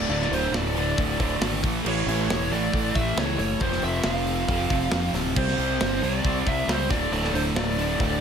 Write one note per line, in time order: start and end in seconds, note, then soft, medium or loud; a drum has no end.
0.00 0.74 D2 medium
0.00 0.10 A2 loud
0.00 0.11 D3 loud
0.00 1.62 D4 medium
0.00 1.62 A4 medium
0.00 1.62 E5 medium
0.08 0.29 D1 medium
0.08 0.31 D2 medium
0.08 0.32 A2 loud
0.08 0.32 D3 loud
0.08 0.32 D5 medium
0.22 snare soft
0.30 0.51 D1 loud
0.30 0.52 D2 medium
0.30 0.53 A2 medium
0.30 0.53 D3 loud
0.30 0.53 C5 medium
0.30 open hi-hat medium
0.52 0.93 D1 medium
0.52 0.75 D2 medium
0.52 0.75 A2 medium
0.52 0.76 D3 loud
0.52 snare loud
0.52 open hi-hat medium
0.56 1.60 D5 medium
0.76 0.96 D2 medium
0.76 0.96 A2 loud
0.76 0.97 D3 loud
0.76 open hi-hat medium
0.97 1.18 D1 medium
0.97 1.17 D2 loud
0.97 1.18 A2 medium
0.97 1.19 D3 loud
0.97 kick medium
0.97 open hi-hat medium
1.19 1.40 D1 medium
1.19 1.39 D2 medium
1.19 1.40 A2 medium
1.19 1.40 D3 medium
1.19 kick medium
1.19 open hi-hat medium
1.40 1.61 G#1 medium
1.40 1.61 D2 medium
1.40 1.61 A2 loud
1.40 1.62 D3 medium
1.40 snare loud
1.40 open hi-hat medium
1.63 1.83 A1 loud
1.63 1.84 A2 loud
1.63 1.85 E3 loud
1.63 1.86 A3 loud
1.63 3.59 A3 medium
1.63 3.60 E4 medium
1.63 3.59 B4 medium
1.63 kick loud
1.63 open hi-hat medium
1.84 2.05 A1 medium
1.84 2.07 A2 loud
1.84 2.07 E3 loud
1.84 2.09 A3 loud
1.84 2.52 C#5 medium
1.84 crash loud
2.06 2.27 A1 loud
2.06 2.28 A2 medium
2.06 2.29 E3 medium
2.06 2.30 A3 loud
2.06 open hi-hat medium
2.28 2.49 E1 medium
2.28 2.51 A2 medium
2.28 2.51 E3 medium
2.28 2.53 A3 loud
2.28 snare loud
2.28 open hi-hat medium
2.50 2.71 A1 medium
2.50 2.72 A2 medium
2.50 2.72 E3 loud
2.50 2.73 A3 loud
2.50 2.92 D5 loud
2.50 open hi-hat medium
2.73 2.93 A1 medium
2.73 2.94 A2 loud
2.73 2.94 E3 loud
2.73 2.95 A3 loud
2.73 kick medium
2.73 open hi-hat medium
2.95 3.15 A1 medium
2.95 3.16 A2 medium
2.95 3.17 E3 medium
2.95 3.17 A3 medium
2.95 3.18 E5 loud
2.95 kick medium
2.95 open hi-hat medium
3.16 3.37 C#2 medium
3.16 3.38 A2 loud
3.16 3.39 E3 medium
3.16 3.39 A3 loud
3.16 3.38 C#5 medium
3.16 snare loud
3.16 open hi-hat medium
3.38 3.59 F#1 medium
3.38 3.59 A2 medium
3.38 3.60 E3 medium
3.38 3.60 A3 medium
3.38 3.61 C#5 medium
3.38 open hi-hat medium
3.60 3.81 F1 loud
3.60 3.82 F2 loud
3.60 3.83 C3 loud
3.60 3.83 F3 loud
3.60 5.36 F3 medium
3.60 6.88 C4 medium
3.60 6.88 G4 medium
3.60 3.82 C5 medium
3.60 kick loud
3.60 open hi-hat medium
3.72 snare soft
3.82 4.03 F1 medium
3.82 4.04 F2 medium
3.82 4.05 C3 medium
3.82 4.05 F3 loud
3.82 4.05 E5 loud
3.82 open hi-hat medium
4.03 4.45 F1 loud
4.03 4.26 F2 medium
4.03 4.26 C3 medium
4.03 4.27 F3 loud
4.03 5.11 F5 loud
4.03 snare loud
4.03 open hi-hat medium
4.27 4.47 F2 medium
4.27 4.48 C3 medium
4.27 4.48 F3 medium
4.27 open hi-hat medium
4.48 4.68 F1 medium
4.48 4.69 F2 medium
4.48 4.70 C3 medium
4.48 4.71 F3 loud
4.48 kick medium
4.48 open hi-hat medium
4.70 4.90 F1 medium
4.70 4.91 F2 medium
4.70 4.92 C3 medium
4.70 4.92 F3 loud
4.70 kick medium
4.70 open hi-hat medium
4.91 5.12 F1 medium
4.91 5.14 F2 medium
4.91 5.14 C3 medium
4.91 5.14 F3 medium
4.91 snare loud
4.91 open hi-hat medium
5.13 5.34 D1 medium
5.13 5.35 F2 medium
5.13 5.35 C3 medium
5.13 5.36 F3 loud
5.13 snare soft
5.13 open hi-hat medium
5.36 5.56 C2 medium
5.36 5.56 C3 medium
5.36 5.57 G3 loud
5.36 5.57 C4 loud
5.36 6.03 C5 medium
5.36 6.88 D5 medium
5.36 kick loud
5.36 crash loud
5.47 snare soft
5.57 5.79 C2 medium
5.57 5.78 C3 medium
5.57 5.79 G3 loud
5.57 5.79 C4 medium
5.57 open hi-hat medium
5.79 6.01 G1 loud
5.79 6.00 C3 medium
5.79 6.01 G3 loud
5.79 6.02 C4 medium
5.79 snare loud
5.79 open hi-hat medium
6.01 6.22 C2 medium
6.01 6.22 C3 medium
6.01 6.23 G3 medium
6.01 6.23 C4 loud
6.01 6.48 D5 loud
6.01 open hi-hat medium
6.23 6.44 C2 medium
6.23 6.44 C3 medium
6.23 6.44 G3 loud
6.23 6.45 C4 loud
6.23 kick medium
6.23 open hi-hat medium
6.45 6.66 C2 loud
6.45 6.66 C3 medium
6.45 6.67 G3 loud
6.45 6.67 C4 medium
6.45 6.70 E5 loud
6.45 kick medium
6.45 open hi-hat medium
6.67 6.88 C#2 medium
6.67 6.88 C3 medium
6.67 6.89 G3 medium
6.67 6.89 C4 loud
6.67 6.90 C5 medium
6.67 snare loud
6.67 open hi-hat medium
6.88 7.10 D1 medium
6.88 7.10 D2 medium
6.88 7.10 A2 loud
6.88 7.11 D3 loud
6.88 8.21 D4 medium
6.88 8.21 A4 medium
6.88 7.11 D5 loud
6.88 8.21 E5 medium
6.88 kick loud
6.88 snare soft
6.88 open hi-hat medium
7.11 7.32 D1 medium
7.11 7.32 D2 loud
7.11 7.32 A2 loud
7.11 7.33 D3 loud
7.11 7.33 D5 loud
7.11 open hi-hat medium
7.24 snare soft
7.33 7.54 D1 loud
7.33 7.54 D2 medium
7.33 7.54 A2 loud
7.33 7.55 D3 loud
7.33 7.40 C5 medium
7.33 open hi-hat medium
7.55 7.96 D1 loud
7.55 7.75 D2 medium
7.55 7.76 A2 medium
7.55 7.76 D3 medium
7.55 8.21 D5 medium
7.55 snare loud
7.76 7.97 D2 medium
7.76 7.97 A2 medium
7.76 7.98 D3 loud
7.76 open hi-hat medium
7.98 8.20 D1 loud
7.98 8.19 D2 loud
7.98 8.19 A2 loud
7.98 8.20 D3 loud
7.98 kick medium
7.98 open hi-hat medium